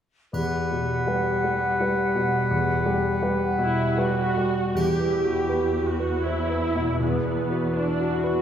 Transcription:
0.33 grand piano E2, clarinet G4, oboe B4, flute section F#5, triangle
0.72 grand piano B2
1.07 grand piano G3 B4 F#5
1.44 grand piano G3
1.80 grand piano G3 B4 F#5
2.15 grand piano B2
2.51 grand piano E2
2.86 grand piano G3
3.22 grand piano G3 B4 F#5
3.59 grand piano B2, viola section E4
3.97 grand piano G3 B4 F#5, viola section F#4
4.37 grand piano G3
4.75 grand piano E2, cello section E2, harp E3, viola section G4, triangle
5.00 grand piano B3, harp E4
5.24 grand piano F#4, harp B4
5.49 harp E4, grand piano B4
5.75 grand piano F#4, harp B4
5.89 viola section F#4
6.00 harp E4, grand piano B4
6.26 harp B3, viola section E4, grand piano C5
6.50 harp E4, grand piano B4
6.75 grand piano B2, harp F#4
7.00 grand piano E2, harp E3, viola section B3
7.25 grand piano B3, harp E4
7.50 grand piano F#4, harp B4
7.74 viola section D4, grand piano B4
7.78 harp E4
8.00 grand piano F#4, harp B4
8.13 viola section F#4
8.24 harp E4, grand piano B4

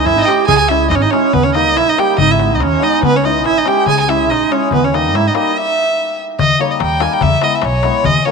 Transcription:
Already playing: hammered dulcimer G#3
0.05 upright bass G#1, clarinet E4, violin E5, darbuka tek
0.16 clarinet D#4 E4, violin D#5 E5
0.21 clarinet D#4, violin D#5
0.26 hammered dulcimer G#3 C#4 E4 G#4, clarinet G4, violin G5, darbuka tek
0.47 upright bass C#2, clarinet G#4, violin G#5, darbuka dum
0.58 clarinet G#4, violin G#5
0.69 hammered dulcimer G#3 C#4 E4 G#4, clarinet E4, violin E5, darbuka tek
0.90 upright bass G#1, clarinet D#4, violin D#5, darbuka tek
0.95 clarinet C#4, violin C#5
1.02 clarinet D#4, violin D#5
1.11 hammered dulcimer G#3 C#4 E4 G#4, clarinet C#4, violin C#5, darbuka tek
1.33 upright bass D#2, clarinet B3, violin B4, darbuka dum
1.44 clarinet C#4, violin C#5, darbuka tek
1.55 hammered dulcimer G3 A#3 D#4 G4, clarinet D#4, violin D#5, darbuka tek
1.76 upright bass A#1, clarinet E4, violin E5, darbuka tek
1.88 clarinet D#4, violin D#5
1.97 hammered dulcimer G3 A#3 D#4 G4, clarinet G4, violin G5, darbuka tek
2.18 upright bass G#1, clarinet D#4, violin D#5, darbuka dum
2.30 clarinet E4, violin E5, darbuka tek
2.39 hammered dulcimer G#3 B3 D#4 G#4, darbuka tek
2.53 clarinet D#4, violin D#5
2.60 upright bass D#2, clarinet C#4, violin C#5, darbuka tek
2.80 hammered dulcimer G#3 B3 D#4 G#4, violin D#5, darbuka tek
2.84 clarinet D#4
3.02 upright bass C#2, clarinet B3, violin B4, darbuka dum
3.15 clarinet C#4, violin C#5, darbuka tek
3.24 hammered dulcimer G#3 C#4 E4 G#4, clarinet D#4, violin D#5, darbuka tek
3.45 upright bass G#1, clarinet E4, violin E5, darbuka tek
3.58 clarinet D#4, violin D#5
3.65 hammered dulcimer G#3 C#4 E4 G#4, clarinet G4, violin G5, darbuka tek
3.86 upright bass C#2, clarinet G#4, violin G#5, darbuka dum
3.99 clarinet G#4, violin G#5, darbuka tek
4.08 hammered dulcimer G#3 C#4 E4 G#4, clarinet E4, violin E5, darbuka tek
4.29 upright bass A#1, clarinet D#4, violin D#5, darbuka tek
4.50 hammered dulcimer G#3 C#4 E4 G#4, clarinet C#4, violin C#5, darbuka tek
4.71 upright bass D#2, clarinet B3, violin B4, darbuka dum
4.84 clarinet C#4, violin C#5, darbuka tek
4.92 hammered dulcimer G3 A#3 D#4 G4, clarinet D#4, violin D#5, darbuka tek
5.14 upright bass G#2, clarinet E4, violin E5, darbuka tek
5.27 clarinet D#4, violin D#5
5.34 hammered dulcimer G3 A#3 D#4 G4, clarinet D#4, darbuka tek
5.38 violin D#5
5.58 violin E5
6.39 upright bass D#2, violin D#5, darbuka dum
6.59 hammered dulcimer G3 A#3 D#4 G4 A#4, violin C#5
6.71 violin D#5
6.80 upright bass D#2, violin G5, darbuka tek
7.00 hammered dulcimer G3 A#3 D#4 G4 A#4, violin G#5, darbuka tek
7.12 violin G5, darbuka tek
7.21 upright bass E2, violin E5, darbuka dum
7.41 hammered dulcimer G#3 B3 E4 G#4 B4, violin D#5, darbuka tek
7.55 violin E5
7.62 upright bass B1, violin C#5, darbuka tek
7.83 hammered dulcimer G#3 B3 E4 G#4 B4, darbuka tek
8.04 upright bass D#2, violin D#5, darbuka dum
8.25 hammered dulcimer G3 A#3 D#4 G4 A#4, violin C#5

